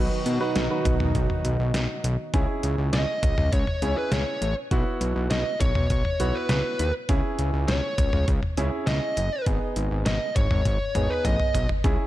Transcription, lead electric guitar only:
0, 0, Header, 1, 2, 480
1, 0, Start_track
1, 0, Key_signature, 4, "minor"
1, 0, Tempo, 594059
1, 1888, Time_signature, 4, 2, 24, 8
1, 9752, End_track
2, 0, Start_track
2, 0, Title_t, "Lead electric guitar"
2, 0, Program_c, 0, 29
2, 2369, Note_on_c, 0, 75, 105
2, 2846, Note_off_c, 0, 75, 0
2, 2849, Note_on_c, 0, 73, 93
2, 3184, Note_off_c, 0, 73, 0
2, 3211, Note_on_c, 0, 71, 79
2, 3331, Note_on_c, 0, 73, 74
2, 3333, Note_off_c, 0, 71, 0
2, 3665, Note_off_c, 0, 73, 0
2, 4288, Note_on_c, 0, 75, 107
2, 4525, Note_off_c, 0, 75, 0
2, 4528, Note_on_c, 0, 73, 97
2, 5130, Note_on_c, 0, 71, 81
2, 5146, Note_off_c, 0, 73, 0
2, 5239, Note_off_c, 0, 71, 0
2, 5249, Note_on_c, 0, 71, 72
2, 5584, Note_off_c, 0, 71, 0
2, 6209, Note_on_c, 0, 73, 112
2, 6656, Note_off_c, 0, 73, 0
2, 7169, Note_on_c, 0, 75, 98
2, 7617, Note_off_c, 0, 75, 0
2, 8130, Note_on_c, 0, 75, 111
2, 8366, Note_off_c, 0, 75, 0
2, 8369, Note_on_c, 0, 73, 96
2, 8971, Note_on_c, 0, 71, 81
2, 8987, Note_off_c, 0, 73, 0
2, 9081, Note_off_c, 0, 71, 0
2, 9089, Note_on_c, 0, 75, 82
2, 9424, Note_off_c, 0, 75, 0
2, 9752, End_track
0, 0, End_of_file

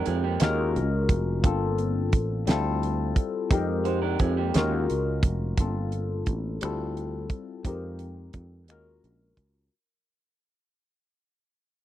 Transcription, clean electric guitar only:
0, 0, Header, 1, 2, 480
1, 0, Start_track
1, 0, Tempo, 689655
1, 1001, Time_signature, 6, 3, 24, 8
1, 8241, End_track
2, 0, Start_track
2, 0, Title_t, "Clean electric guitar"
2, 0, Program_c, 0, 27
2, 41, Note_on_c, 0, 68, 85
2, 50, Note_on_c, 0, 60, 68
2, 155, Note_off_c, 0, 68, 0
2, 159, Note_off_c, 0, 60, 0
2, 166, Note_on_c, 0, 67, 81
2, 169, Note_on_c, 0, 58, 63
2, 391, Note_off_c, 0, 67, 0
2, 393, Note_off_c, 0, 58, 0
2, 2680, Note_on_c, 0, 63, 54
2, 2681, Note_on_c, 0, 72, 73
2, 2794, Note_off_c, 0, 72, 0
2, 2795, Note_off_c, 0, 63, 0
2, 2797, Note_on_c, 0, 70, 88
2, 2801, Note_on_c, 0, 62, 77
2, 2912, Note_off_c, 0, 70, 0
2, 2915, Note_off_c, 0, 62, 0
2, 2920, Note_on_c, 0, 68, 79
2, 2924, Note_on_c, 0, 60, 73
2, 3034, Note_off_c, 0, 68, 0
2, 3037, Note_off_c, 0, 60, 0
2, 3043, Note_on_c, 0, 67, 68
2, 3049, Note_on_c, 0, 58, 63
2, 3270, Note_off_c, 0, 67, 0
2, 3273, Note_off_c, 0, 58, 0
2, 8241, End_track
0, 0, End_of_file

